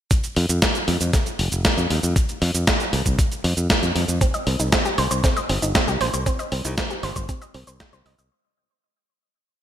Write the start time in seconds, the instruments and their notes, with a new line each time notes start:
0.11 kick, closed hi-hat, cabasa
0.24 closed hi-hat, cabasa
0.36 fingered electric bass F2, open hi-hat
0.49 fingered electric bass F2, closed hi-hat, cabasa
0.62 kick, snare, closed hi-hat, cabasa
0.75 closed hi-hat, cabasa
0.88 fingered electric bass F2, open hi-hat
1.01 fingered electric bass F2, closed hi-hat, cabasa
1.13 kick, snare, closed hi-hat, cabasa
1.26 closed hi-hat, cabasa
1.39 fingered electric bass F1, open hi-hat
1.52 fingered electric bass F1, closed hi-hat, cabasa
1.65 kick, snare, closed hi-hat, cabasa
1.78 fingered electric bass F2, closed hi-hat, cabasa
1.90 fingered electric bass D#2, open hi-hat
2.03 fingered electric bass F2, closed hi-hat, cabasa
2.16 kick, closed hi-hat, cabasa
2.29 closed hi-hat, cabasa
2.42 fingered electric bass F2, open hi-hat
2.54 fingered electric bass F2, closed hi-hat, cabasa
2.67 kick, snare, closed hi-hat, cabasa
2.80 closed hi-hat, cabasa
2.93 fingered electric bass C2, open hi-hat
3.06 fingered electric bass C2, kick, closed hi-hat, cabasa
3.19 kick, closed hi-hat, cabasa
3.32 closed hi-hat, cabasa
3.44 fingered electric bass F2, open hi-hat
3.57 fingered electric bass F2, closed hi-hat, cabasa
3.70 kick, snare, closed hi-hat, cabasa
3.83 fingered electric bass F2, closed hi-hat, cabasa
3.95 fingered electric bass F2, open hi-hat
4.08 fingered electric bass F2, closed hi-hat, cabasa
4.21 synth arpeggio sound C4, kick, closed hi-hat, cabasa
4.34 synth arpeggio sound D#5, closed hi-hat, cabasa
4.47 fingered electric bass C2, synth arpeggio sound C4, open hi-hat
4.59 fingered electric bass C2, synth arpeggio sound D#4, closed hi-hat, cabasa
4.72 synth arpeggio sound C4, kick, snare, closed hi-hat, cabasa
4.85 synth arpeggio sound G4, closed hi-hat, cabasa
4.98 fingered electric bass C2, synth arpeggio sound C5, open hi-hat
5.11 fingered electric bass C2, synth arpeggio sound C5, closed hi-hat, cabasa
5.24 synth arpeggio sound C4, kick, snare, closed hi-hat, cabasa
5.37 synth arpeggio sound D#5, closed hi-hat, cabasa
5.49 fingered electric bass G1, synth arpeggio sound C4, open hi-hat
5.62 fingered electric bass G1, synth arpeggio sound D#4, closed hi-hat, cabasa
5.75 synth arpeggio sound C4, kick, snare, closed hi-hat, cabasa
5.88 fingered electric bass C2, synth arpeggio sound G4, closed hi-hat, cabasa
6.01 fingered electric bass A#1, synth arpeggio sound C5, open hi-hat
6.13 fingered electric bass C2, synth arpeggio sound C5, closed hi-hat, cabasa
6.26 synth arpeggio sound C4, kick, closed hi-hat, cabasa
6.39 synth arpeggio sound D#5, closed hi-hat, cabasa
6.52 fingered electric bass C2, synth arpeggio sound C4, open hi-hat
6.65 fingered electric bass C2, synth arpeggio sound D#4, closed hi-hat, cabasa
6.78 synth arpeggio sound C4, kick, snare, closed hi-hat, cabasa
6.90 synth arpeggio sound G4, closed hi-hat, cabasa
7.03 fingered electric bass G1, synth arpeggio sound C5, open hi-hat
7.16 fingered electric bass G1, synth arpeggio sound C5, kick, closed hi-hat, cabasa
7.29 synth arpeggio sound C4, kick, closed hi-hat, cabasa
7.42 synth arpeggio sound D#5, closed hi-hat, cabasa
7.54 fingered electric bass C2, synth arpeggio sound C4, open hi-hat
7.67 fingered electric bass C2, synth arpeggio sound C5, cabasa
7.80 synth arpeggio sound G5, kick, snare, closed hi-hat, cabasa
7.93 fingered electric bass C2, synth arpeggio sound C5, closed hi-hat, cabasa
8.06 fingered electric bass C2, synth arpeggio sound D#5, open hi-hat
8.18 fingered electric bass C2, synth arpeggio sound D#5, closed hi-hat, cabasa